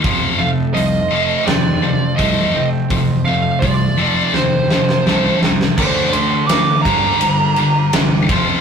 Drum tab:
CC |----------------|----------------|x---------------|
RD |----------------|----------------|--x-x-x-x-x-x-x-|
HH |o---o---o---o---|o---o-----------|----------------|
SD |--------o-------|--------o-ooo-oo|----o-------o---|
BD |o-----------o---|o---o-----------|o-----o-------o-|